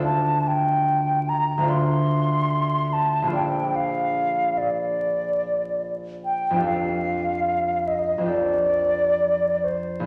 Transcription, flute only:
X:1
M:4/4
L:1/8
Q:1/4=72
K:Bb
V:1 name="Flute"
a g2 b c'3 a | g f2 d4 g | f3 e d3 c |]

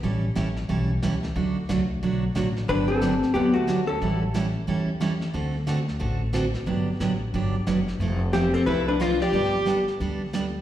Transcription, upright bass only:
X:1
M:4/4
L:1/8
Q:"Swing" 1/4=181
K:G
V:1 name="Upright bass" clef=bass
A,,,2 A,,,2 B,,,2 ^C,,2 | D,,2 C,,2 B,,,2 A,,,2 | G,,,4 D,,4 | A,,,4 E,,4 |
D,,4 A,,,4 | G,,,2 A,,,2 G,,,2 F,,,2 | =F,,,4 C,,4 | G,,,4 D,,4 |]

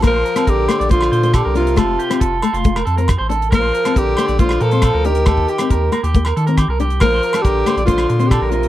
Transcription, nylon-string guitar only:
X:1
M:4/4
L:1/16
Q:1/4=138
K:Bb
V:1 name="Nylon-string guitar"
B,2 z C2 z B,2 B,2 z4 D2 | A,2 z C2 z A,2 A,2 z C2 z D2 | B,2 z C2 z B,2 B,2 z C2 z D2 | z3 C2 z B,2 B,2 z C2 z D2 |
B,2 z4 B,2 B,2 z C2 z D2 |]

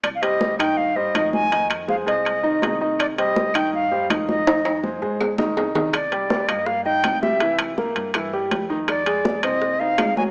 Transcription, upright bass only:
X:1
M:4/4
L:1/8
Q:1/4=163
K:Cm
V:1 name="Upright bass" clef=bass
C,,3 G,,3 F,,2- | F,,3 C,,3 C,,2- | C,,3 G,,3 F,,2- | F,,3 A,,3 C,,2- |
C,,3 G,,3 C,,2- | C,,3 G,,3 F,,2- | F,,3 C,,3 A,,,2 |]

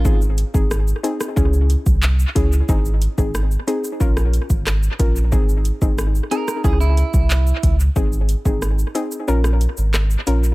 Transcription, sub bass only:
X:1
M:4/4
L:1/16
Q:1/4=91
K:Ab
V:1 name="Sub bass" clef=bass
A,,,3 A,,,3 z2 D,,3 C,,3 D,,2 | A,,,3 A,,,3 z2 B,,,3 A,,,3 B,,,2 | A,,,3 A,,,3 z2 D,,3 C,,3 D,,2 | A,,,3 A,,,3 z2 B,,,3 A,,,3 B,,,2 |]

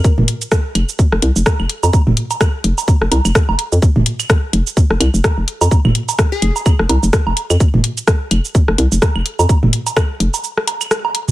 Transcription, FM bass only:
X:1
M:4/4
L:1/16
Q:"Swing 16ths" 1/4=127
K:Fm
V:1 name="FM bass" clef=bass
z F,,, z4 F,,, z2 F,,, C,, F,,, z F,,, z F,, | z F,,, z4 F,,, z2 F,,, C,, F,,, z F,,, z F,, | z F,,, z4 F,,, z2 F,,, C,, F,,, z F,,, z F,, | z F,,, z4 F,,, z2 F,,, C,, F,,, z F,,, z F,, |
z F,,, z4 F,,, z2 F,,, C,, F,,, z F,,, z F,, | z F,,, z4 F,,, z8 z |]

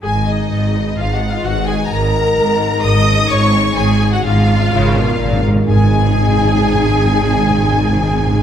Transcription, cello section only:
X:1
M:3/4
L:1/8
Q:1/4=128
K:G#dor
V:1 name="Cello section" clef=bass
G,,2 G,,2 G,,2 | G,,2 G,,2 G,,2 | G,,2 G,,2 G,,2 | G,,2 C, B,, A,, G,, |
G,,6- | G,,6 |]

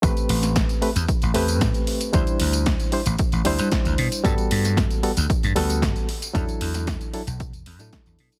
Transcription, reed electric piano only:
X:1
M:4/4
L:1/16
Q:1/4=114
K:Ador
V:1 name="Reed electric piano"
[A,CGB]6 [A,CGB] z3 [A,CGB]6 | [G,DEc]6 [G,DEc] z3 [G,DEc]6 | [G,B,FA]6 [G,B,FA] z3 [G,B,FA]4 z2 | [F,DEA]6 [F,DEA] z4 [F,DEA]4- [F,DEA] |]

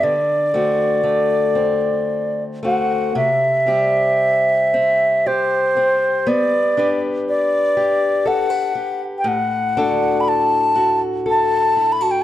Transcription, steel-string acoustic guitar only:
X:1
M:3/4
L:1/16
Q:1/4=59
K:Dmix
V:1 name="Steel-string acoustic guitar"
D,2 [A,CF]2 A,2 C4 [A,CF]2 | C,2 [G,CG]4 C2 G2 C2 | B,2 [DGB]4 G2 A B G2 | A,,2 [DFA]4 F2 A2 E F |]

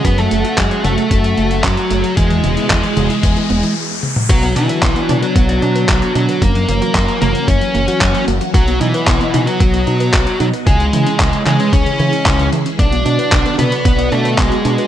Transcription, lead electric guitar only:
X:1
M:4/4
L:1/16
Q:1/4=113
K:Bdor
V:1 name="Lead electric guitar"
[B,B] [A,A]3 [G,G]2 [A,A]6 [F,F]4 | [G,G]12 z4 | [F,F]2 [E,E]4- [E,E] [F,F]6- [F,F] [F,F]2 | [^A,^A]6 [A,A]2 [Cc]6 z2 |
[F,F]2 [E,E]4- [E,E] [F,F]6- [F,F] [F,F]2 | [G,G]6 [G,G]2 [Cc]6 z2 | [Dd]6 [B,B]4 [A,A]2 [G,G]4 |]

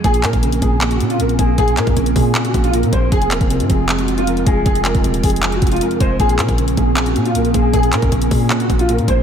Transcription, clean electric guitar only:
X:1
M:4/4
L:1/8
Q:1/4=156
K:Bbm
V:1 name="Clean electric guitar" clef=bass
B,, B,, D, B,, B,, B,, B,, B, | B,, B,, D, B,, B,, B,, B,, B, | F,, F,, C, F,, F,, F,, F,, A, | F,, F,, C, F,, F,, F,, F,, A, |
B,, B,, D, B,, B,, B,, B,, B, | B,, B,, D, B,, B,, B,, B,, B, |]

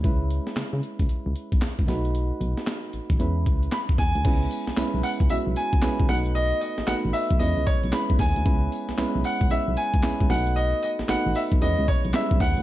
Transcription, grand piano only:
X:1
M:4/4
L:1/8
Q:"Swing 16ths" 1/4=114
K:C#m
V:1 name="Grand piano"
z8 | z6 b g- | g3 f e g2 f | d d f e d c b g- |
g3 f e g2 f | d d f e d c e f |]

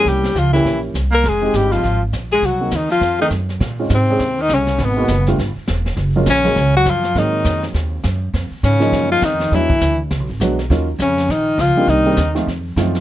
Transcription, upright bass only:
X:1
M:4/4
L:1/8
Q:"Swing" 1/4=203
K:Fm
V:1 name="Upright bass" clef=bass
C,,2 D,,2 B,,,2 C,,2 | F,,,2 G,,,2 A,,,2 B,,,2 | C,,2 E,,2 F,,2 _G,,2 | [K:Bbm] B,,2 A,,2 E,,2 C,,2 |
A,,,2 G,,,2 =G,,, z =E,,,2 | G,,,2 B,,,2 D,,2 G,,2 | A,,2 F,,2 E,,2 G,,2 | F,, z A,,2 G,,2 F,,2 |
=E,,2 =D,,2 (3_D,, =B,,, ^G,,, B,,,2 | E,,2 F,,2 B,,,2 D,, z | C,,2 E,,2 F,,2 G,,2 |]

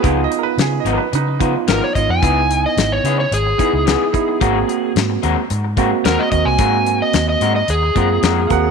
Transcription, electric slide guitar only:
X:1
M:4/4
L:1/16
Q:1/4=110
K:Db
V:1 name="Electric slide guitar"
z12 B d e a- | a3 e2 d2 d A8- | A4 z8 B e e a- | a3 e2 e2 e A8 |]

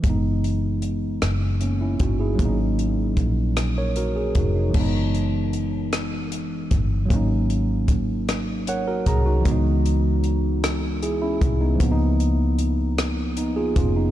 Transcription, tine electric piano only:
X:1
M:6/8
L:1/16
Q:3/8=51
K:F#mix
V:1 name="Tine electric piano"
z8 [A,C] [CE] [DF] [EG]- | [EG] z6 [Ac] [FA] G [DF] D- | D z8 z3 | z8 [Acf] [FA] [Ga] [DF]- |
[DF] z6 z [EG] [CE]2 [B,D]- | [B,D] z6 z [B,D] [^EG] [CE] [B,D] |]
V:2 name="Tine electric piano"
[E,G,B,D]12 | [F,A,B,CD]12 | [E,G,B,D]12 | [F,A,CD]12 |
[E,G,B,D]12 | [^E,A,B,=D^D]12 |]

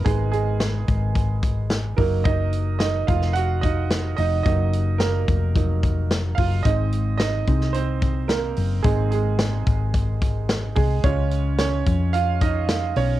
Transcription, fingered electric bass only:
X:1
M:4/4
L:1/8
Q:1/4=109
K:G#dor
V:1 name="Fingered electric bass" clef=bass
G,,,3 G,,,4 F,,,- | F,,,3 E,,,4 E,,, | F,,,3 E,,,4 F,,, | G,,,3 ^B,,,4 F,,, |
G,,,3 G,,,4 ^B,,, | C,,3 E,,4 B,,, |]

